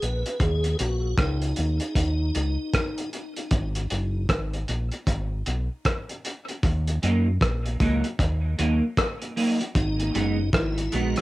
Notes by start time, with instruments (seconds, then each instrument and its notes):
0.02 fingered electric bass A#1, tonewheel organ B4, closed hi-hat
0.26 closed hi-hat
0.40 fingered electric bass D#2, tonewheel organ G#4, kick, closed hi-hat
0.64 closed hi-hat
0.79 fingered electric bass A#1, tonewheel organ F#4, closed hi-hat
1.18 fingered electric bass C#2, tonewheel organ D#4, kick, cross-stick, closed hi-hat
1.42 closed hi-hat
1.56 fingered electric bass D#2, tonewheel organ D#4, closed hi-hat
1.80 closed hi-hat
1.95 fingered electric bass D#2, kick, closed hi-hat
2.35 fingered electric bass C#2, closed hi-hat
2.73 kick, cross-stick, closed hi-hat
2.98 closed hi-hat
3.13 closed hi-hat
3.36 closed hi-hat
3.51 fingered electric bass G#1, kick, closed hi-hat
3.75 closed hi-hat
3.90 fingered electric bass F#1, closed hi-hat
4.29 fingered electric bass G#1, kick, cross-stick, closed hi-hat
4.53 closed hi-hat
4.68 fingered electric bass A#1, closed hi-hat
4.91 closed hi-hat
5.07 fingered electric bass G#1, kick, closed hi-hat
5.46 fingered electric bass B1, closed hi-hat
5.85 kick, cross-stick, closed hi-hat
6.09 closed hi-hat
6.25 closed hi-hat
6.48 closed hi-hat
6.63 fingered electric bass D#2, kick, closed hi-hat
6.87 closed hi-hat
7.02 fingered electric bass F#2, clean electric guitar F#3 A#3 D#4, closed hi-hat
7.41 fingered electric bass A#1, kick, cross-stick, closed hi-hat
7.66 closed hi-hat
7.80 fingered electric bass C#2, clean electric guitar F#3 A#3 D#4, kick, closed hi-hat
8.04 closed hi-hat
8.19 fingered electric bass D#2, kick, closed hi-hat
8.58 fingered electric bass D#2, clean electric guitar F#3 A#3 D#4, closed hi-hat
8.97 kick, cross-stick, closed hi-hat
9.22 closed hi-hat
9.36 clean electric guitar F#3 A#3 D#4, open hi-hat
9.61 muted clean electric guitar stroke, closed hi-hat
9.75 fingered electric bass G#1, tonewheel organ D#4, kick, closed hi-hat
10.00 closed hi-hat
10.15 fingered electric bass F#1, clean electric guitar G#3 B3 D#4, closed hi-hat
10.53 fingered electric bass G#1, tonewheel organ E4, kick, cross-stick, closed hi-hat
10.78 closed hi-hat
10.92 fingered electric bass A#1, clean electric guitar G#3 B3 D#4, tonewheel organ F#4, closed hi-hat
11.16 cross-stick, closed hi-hat